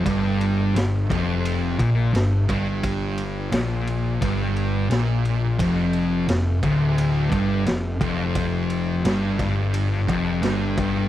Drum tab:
RD |xxxxxxxx|xxxxxxxx|xxxxxxxx|xxxxxxxx|
SD |--oo--o-|--o---o-|--o---o-|--oo--o-|
BD |o--o-o-o|o---o---|o--o-o-o|o--o-o-o|